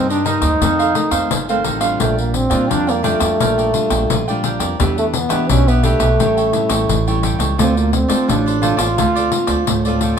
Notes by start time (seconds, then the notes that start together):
Already playing: G2 G3 A#3 D#4
0.10 D4 A#4 C5 D#5, pandeiro
0.25 G3 A#3 D#4 A#4 C5 D#5, pandeiro
0.41 D#2 A#4 C5 D#5, pandeiro
0.61 F2 D#3 A3 C4 D#4 A4 C5 F5, pandeiro
0.79 A4 C5 F5, pandeiro
0.94 D#3 A3 C4, muted cavaquinho stroke, pandeiro
1.11 F2 A4 C5 F5, pandeiro
1.30 G1 C3, pandeiro
1.49 D#3 A3 C4 A4 C5 F5, pandeiro
1.64 A1 D#4 A4 C5 F5, pandeiro
1.80 G3 D4 F4 A4 C5 F5, pandeiro
2.00 A#1 A#2 A3 D4 A#4 D5 G5, pandeiro
2.18 A#3, pandeiro
2.34 C4, muted cavaquinho stroke, pandeiro
2.50 A#2 G3 D4 F4 A#4 D5 G5, pandeiro
2.69 F2 F3 D4 A#4 D5 G5, pandeiro
2.87 A#3 A#4 D5 G5, pandeiro
3.03 G3 A3 D4 F4 A#4 D5 G5, pandeiro
3.20 F2 A#4 D5 G5, pandeiro
3.40 A#1 A#2 D4 A#4 D5 G5, pandeiro
3.58 A#4 D5 G5, pandeiro
3.73 G3 D4 F4, muted cavaquinho stroke, pandeiro
3.90 A#1 D5 G5, pandeiro
4.10 A#1 F3, pandeiro
4.28 G3 D4 F4 A#4 D5 G5, pandeiro
4.44 D4 A#4 D5 G5, pandeiro
4.60 F2 A#4 D5 G5, pandeiro
4.79 E2 E3 G3 B3 D4 G4 B4 E5, pandeiro
4.98 A3, pandeiro
5.14 B3, muted cavaquinho stroke, pandeiro
5.29 E3 B3 D4 G4 B4 E5, pandeiro
5.49 B1 B2 C#4 D4 G4 B4 E5, pandeiro
5.68 B3 G4 B4 E5, pandeiro
5.83 A3 B3 D4 G4 B4 E5, pandeiro
5.99 B1 G4 B4 E5, pandeiro
6.19 A1 A2 G3 C#4 E4 G4 A4 C#5 G5, pandeiro
6.37 A4 C#5 G5, pandeiro
6.53 G3 C#4 E4, muted cavaquinho stroke, pandeiro
6.69 A1 A4 C#5 G5, pandeiro
6.89 A1 E3, pandeiro
7.07 G3 C#4 E4 A4 C#5 G5, pandeiro
7.23 G4 A4 C#5 G5, pandeiro
7.39 C#2 A4 C#5 G5, pandeiro
7.58 D2 D3 A3 C4 F4 A4 C5 D5, pandeiro
7.77 A#3, pandeiro
7.92 C4, muted cavaquinho stroke, pandeiro
8.08 A3 C4 F4 A4 C5 D5, pandeiro
8.28 A1 A2 D4 F4 A4 C5 D5, pandeiro
8.46 A4 C5 D5, pandeiro
8.62 A3 C4 F4 A4 C5 D5, pandeiro
8.77 A1 F4 A4 C5 D5, pandeiro
8.97 D2 D3 A3 C4 F4 A4 C5 D5, pandeiro
9.15 A4 C5 D5, pandeiro
9.31 A3 C4 F4, muted cavaquinho stroke, pandeiro
9.47 D2 A4 C5 D5, pandeiro
9.67 D2 A2, pandeiro
9.85 A3 C4 F4 A4 C5 D5, pandeiro
10.01 F4 A4 C5 D5, pandeiro